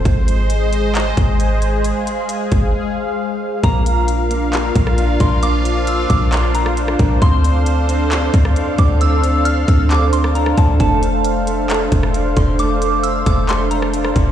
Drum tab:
HH |x-x-x-x-x-x-x-x-|x-x-x-x---------|x-x-x-x-x-x-x-x-|x-x-x-x-x-x-x-x-|
CP |--------x-------|----------------|--------x-------|--------x-------|
SD |----------------|----------------|-----------r----|-----------r-r--|
BD |o---------o-----|------o---------|o---------o---o-|------o-------o-|

HH |x-x-x-x-x-x-x-x-|x-x-x-x-x-x-x-x-|x-x-x-x-x-x-x-x-|x-x-x-x-x-x-x-x-|
CP |--------x-------|--------x-------|--------x-------|--------x-------|
SD |-----------r----|-----------r-r--|-----------r----|-----------r-r--|
BD |o---------o---o-|------o-------o-|o---------o---o-|------o-------o-|